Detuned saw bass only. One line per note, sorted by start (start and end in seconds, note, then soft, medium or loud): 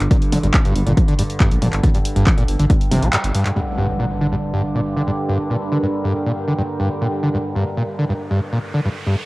0.00 0.08 G1 loud
0.43 0.51 G1 loud
0.65 0.72 G1 medium
0.76 0.83 G1 loud
0.87 0.94 G1 loud
1.51 1.59 A#1 loud
1.62 1.70 G1 medium
1.73 1.80 G1 loud
2.16 2.23 G1 loud
2.38 2.45 G1 medium
2.48 2.56 G1 loud
2.59 2.67 G1 loud
2.91 2.99 G1 loud
3.02 3.10 A#1 loud
3.24 3.31 G1 medium